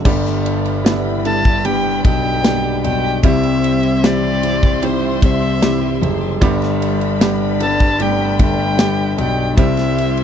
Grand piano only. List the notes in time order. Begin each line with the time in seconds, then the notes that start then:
0.06 G1
2.05 B1
2.84 B1
3.24 C2
5.22 C2
6.02 F#1
6.42 G1
8.40 G1
9.18 B1
9.58 C2